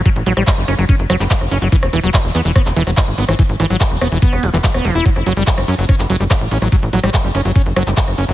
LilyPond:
<<
  \new Staff \with { instrumentName = "Acid bass" } { \clef bass \time 4/4 \key fis \phrygian \tempo 4 = 144 fis16 r16 fis16 g16 g16 r16 cis'16 fis16 cis'16 r16 fis16 g16 g16 r16 cis'16 fis16 | e16 r16 e16 fis16 fis16 r16 b16 e16 b16 r16 e16 fis16 fis16 r16 b16 e16 | e16 r16 e16 fis16 r8 b16 e16 b8 e16 e16 fis16 b16 e16 e'16 | fis16 r16 fis16 g16 g16 g16 cis'16 fis16 cis'16 r16 fis16 g16 r8 cis'16 fis16 |
fis16 r16 fis16 g16 g16 g16 cis'16 fis16 cis'16 r16 fis16 g16 r8 cis'16 fis16 | }
  \new Staff \with { instrumentName = "Analog synth bass" } { \clef bass \time 4/4 \key fis \phrygian r16 a,,16 a,,16 a,,16 r16 fis,,16 fis,,16 fis,,16 r16 fis,,16 fis,,16 fis,,16 r16 fis,,16 fis,,16 fis,,16 | r16 e,,16 e,,16 e,,16 r16 e,,16 e,16 e,,16 r16 e,,16 e,,16 e,,16 r16 gis,,16 gis,,16 gis,,16 | r16 gis,,16 gis,,16 gis,,16 r16 e,,16 e,,16 e,,16 r16 e,,16 e,,16 e,,16 r16 e,,16 e,,16 e,,16 | r16 fis,,16 fis,,16 fis,,16 r16 fis,,16 fis,16 fis,,16 r16 fis,,16 fis,,16 fis,,16 r16 a,,16 a,,16 a,,16 |
r16 a,,16 a,,16 a,,16 r16 fis,,16 fis,,16 fis,,16 r16 fis,,16 fis,,16 fis,,16 r16 fis,,16 fis,,16 fis,,16 | }
  \new DrumStaff \with { instrumentName = "Drums" } \drummode { \time 4/4 <hh bd>16 hh16 hho16 <hh ss>16 <hc hh bd>16 hh16 <hho ss>16 hh16 <hh bd>16 hh16 <hho ss>16 <hc hh>16 <hc hh bd>16 <hh ss>16 hho8 | <hh bd>16 <hh ss>16 hho16 hh16 <hc hh bd ss>16 hh16 hho16 hh16 <hh bd ss>16 <hc hh>16 hho16 <hh ss>16 <hc hh bd>16 hh16 hho16 ss16 | <hh bd>16 hh16 <hho ss>16 hh16 <hc hh bd>16 hh16 <hho ss>16 hh16 <hh bd>16 <hh ss>16 hho16 <hc hh>16 <hc hh bd>16 <hh ss>16 hho8 | <hh bd>16 <hh ss>16 hho16 hh16 <hc hh bd>16 <hh ss>16 hho16 hh16 <hh bd ss>16 <hc hh>16 hho16 hh16 <hc hh bd ss>16 hh16 hho16 ss16 |
<hh bd>16 hh16 hho16 <hh ss>16 <hc hh bd>16 hh16 <hho ss>16 hh16 <hh bd>16 hh16 <hho ss>16 <hc hh>16 <hc hh bd>16 <hh ss>16 hho8 | }
>>